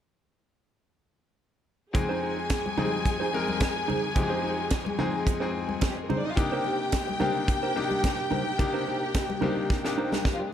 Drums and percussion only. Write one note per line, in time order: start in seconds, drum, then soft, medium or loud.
1.95 kick loud
1.95 closed hi-hat medium
1.95 muted conga soft
1.95 low conga medium
2.50 kick medium
2.50 snare loud
2.50 closed hi-hat medium
2.66 high conga medium
2.78 high conga medium
2.78 low conga medium
3.06 kick medium
3.06 snare soft
3.06 closed hi-hat soft
3.06 muted conga soft
3.34 muted conga soft
3.48 high conga medium
3.60 kick medium
3.60 snare loud
3.60 closed hi-hat medium
3.60 muted conga soft
3.90 muted conga soft
3.90 high conga medium
3.90 low conga medium
4.16 kick loud
4.16 closed hi-hat soft
4.16 muted conga soft
4.16 low conga medium
4.44 muted conga soft
4.70 kick loud
4.70 snare loud
4.70 closed hi-hat medium
4.70 muted conga soft
4.86 high conga medium
4.99 muted conga soft
4.99 high conga medium
4.99 low conga medium
5.27 kick medium
5.27 snare soft
5.27 closed hi-hat medium
5.69 high conga medium
5.81 kick loud
5.81 snare loud
5.81 closed hi-hat medium
6.10 muted conga soft
6.10 high conga medium
6.10 low conga medium
6.37 kick loud
6.37 closed hi-hat soft
6.37 low conga medium
6.65 muted conga soft
6.92 kick loud
6.92 snare loud
6.92 closed hi-hat medium
6.92 muted conga soft
7.09 high conga medium
7.21 muted conga soft
7.21 high conga medium
7.21 low conga medium
7.48 kick loud
7.48 snare soft
7.48 closed hi-hat medium
7.77 muted conga soft
7.91 high conga medium
8.04 kick loud
8.04 snare loud
8.04 closed hi-hat medium
8.04 muted conga soft
8.32 muted conga soft
8.32 high conga medium
8.32 low conga medium
8.59 kick loud
8.59 closed hi-hat soft
8.59 muted conga soft
8.59 low conga medium
8.87 muted conga soft
9.14 kick medium
9.14 snare loud
9.14 closed hi-hat medium
9.14 muted conga soft
9.30 high conga medium
9.42 muted conga soft
9.42 high conga medium
9.42 low conga medium
9.70 kick loud
9.70 snare soft
9.70 muted conga soft
9.85 snare soft
9.98 muted conga soft
10.12 snare medium
10.12 high conga medium
10.25 kick medium
10.25 snare medium